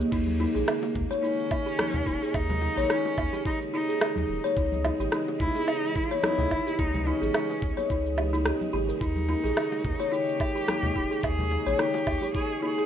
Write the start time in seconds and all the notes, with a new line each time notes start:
0.00 A#3, cabasa
0.12 D#2 C#3 D#3 G#3 A#3 D#4, kick, crash, cabasa
0.27 high conga, cabasa
0.40 D#4, high bongo
0.55 A#1 G#4, high conga, cabasa
0.68 cross-stick, cabasa, low woodblock
0.83 high bongo, cabasa
0.95 D#2, kick, low conga
1.11 C#5, high bongo, cabasa
1.23 C#4 D#4, cabasa
1.40 cabasa
1.51 D#4, kick, low woodblock
1.66 G4, cabasa
1.78 D#4, cross-stick, high conga, cabasa
1.94 D#2, low conga, cabasa
2.06 D#1 D#4, kick
2.22 G#4, cabasa
2.34 D#2 D#4, kick, cabasa, low woodblock
2.49 high conga, low conga, cabasa
2.62 high bongo
2.77 A#1 C#5, cabasa
2.90 C#4 D#4, cross-stick, cabasa
3.05 high bongo, cabasa
3.18 D#2 D#4, kick, low woodblock
3.33 G4, high bongo, high conga, cabasa
3.45 D#4, kick, cabasa
3.62 cabasa
3.74 D#4
3.89 G#4, cabasa
4.01 cross-stick, cabasa, low woodblock
4.16 D#2, high conga, cabasa
4.29 D#1
4.44 C#5, cabasa
4.57 C#2 E3 B3 D#4 D#5, kick, cabasa
4.72 high conga, cabasa
4.84 D#4, high bongo, low woodblock
4.99 G#1 G4, high conga, cabasa
5.12 D#4, cross-stick, cabasa
5.28 high bongo, cabasa
5.40 C#2 D#4 E4, kick, low conga
5.55 G#4, high bongo, cabasa
5.68 D#4, cabasa, low woodblock
5.84 cabasa
5.96 E4, kick
6.11 C#5, cabasa
6.23 D#4 E4, cross-stick, high conga, cabasa
6.38 C#2, low conga, cabasa
6.51 G#1 D#4, kick, low woodblock
6.67 G4, cabasa
6.79 C#2 D#4, kick, cabasa
6.94 high conga, low conga, cabasa
7.07 C#4 D#4, high bongo
7.22 G#1 G#4, high conga, cabasa
7.34 cross-stick, cabasa, low woodblock
7.50 high bongo, cabasa
7.62 C#2, kick
7.77 C#5, high bongo, high conga, cabasa
7.90 C#2 D#4, kick, cabasa
8.06 cabasa
8.18 G4, low woodblock
8.33 D#4, cabasa
8.45 G4, cross-stick, cabasa
8.61 high conga, cabasa
8.73 G#1 G4
8.89 A#4, cabasa
9.01 D#2 D#3 A#3 D#4 C#5, kick, cabasa
9.16 high conga, cabasa
9.29 D#4, high bongo
9.43 A#1 G#4, high conga, cabasa
9.57 cross-stick, cabasa, low woodblock
9.72 high bongo, cabasa
9.84 D#2, kick, low conga
9.99 C#5, high bongo, cabasa
10.12 D#4 G4, cabasa
10.29 cabasa
10.40 D#4, kick, low woodblock
10.55 G4, cabasa
10.68 D#4, cross-stick, high conga, cabasa
10.83 D#2, low conga, cabasa
10.96 D#1 D#4, kick
11.11 G#4, cabasa
11.23 D#2 G#4, kick, cabasa, low woodblock
11.39 high conga, low conga, cabasa
11.51 high bongo
11.66 A#1 C#5, cabasa
11.73 G#4
11.79 D#4 G4, cross-stick, cabasa
11.94 high bongo, cabasa
12.07 D#2 D#4, kick, low woodblock
12.21 G4, high bongo, high conga, cabasa
12.35 D#4 G#4, kick, cabasa
12.51 cabasa
12.62 D#4 G#4
12.78 G#4, cabasa